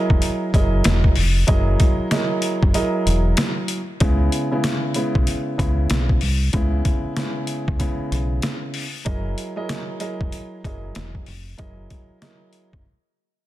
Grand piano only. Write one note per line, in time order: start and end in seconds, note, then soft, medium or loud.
0.00 0.49 F#3 medium
0.00 0.49 E4 medium
0.00 0.49 G#4 medium
0.00 0.49 A#4 medium
0.00 0.49 D#5 loud
0.54 1.13 F#3 medium
0.54 1.13 E4 medium
0.54 1.13 G#4 medium
0.54 1.13 A#4 medium
0.54 1.13 D#5 loud
1.47 2.07 F#3 loud
1.47 2.07 E4 medium
1.47 2.07 G#4 medium
1.47 2.07 A#4 medium
1.47 2.07 D#5 loud
2.11 2.70 F#3 medium
2.11 2.70 E4 medium
2.11 2.71 G#4 medium
2.11 2.71 A#4 medium
2.11 2.71 D#5 loud
2.74 3.77 F#3 medium
2.74 3.77 E4 medium
2.74 3.78 G#4 medium
2.74 3.78 A#4 medium
2.74 3.78 D#5 loud
4.00 4.47 C#3 medium
4.00 4.47 G#3 medium
4.00 4.47 B3 medium
4.00 4.47 E4 loud
4.51 4.92 C#3 medium
4.51 4.93 G#3 medium
4.51 4.93 B3 medium
4.51 4.93 E4 loud
4.95 5.55 C#3 medium
4.95 5.55 G#3 medium
4.95 5.55 B3 medium
4.95 5.55 E4 loud
5.58 6.17 C#3 medium
5.58 6.18 G#3 medium
5.58 6.18 B3 medium
5.58 6.18 E4 medium
6.53 7.12 C#3 medium
6.53 7.13 G#3 medium
6.53 7.13 B3 medium
6.53 7.13 E4 loud
7.16 7.76 C#3 medium
7.16 7.76 G#3 medium
7.16 7.76 B3 medium
7.16 7.76 E4 loud
7.79 8.83 C#3 medium
7.79 8.83 G#3 medium
7.79 8.83 B3 medium
7.79 8.83 E4 loud
9.05 9.52 F#3 medium
9.05 9.52 E4 medium
9.05 9.52 G#4 medium
9.05 9.52 A#4 medium
9.05 9.52 D#5 loud
9.56 9.97 F#3 medium
9.56 9.98 E4 medium
9.56 9.98 G#4 medium
9.56 9.98 A#4 medium
9.56 9.98 D#5 loud
10.00 10.59 F#3 medium
10.00 10.60 E4 medium
10.00 10.60 G#4 medium
10.00 10.60 A#4 medium
10.00 10.60 D#5 medium
10.65 11.23 F#3 medium
10.65 11.24 E4 medium
10.65 11.24 G#4 medium
10.65 11.24 A#4 medium
10.65 11.24 D#5 loud
11.57 12.17 F#3 medium
11.57 12.17 E4 medium
11.57 12.18 G#4 medium
11.57 12.18 A#4 medium
11.57 12.18 D#5 loud
12.21 12.81 F#3 medium
12.21 12.81 E4 medium
12.21 12.81 G#4 medium
12.21 12.81 A#4 medium
12.21 12.81 D#5 loud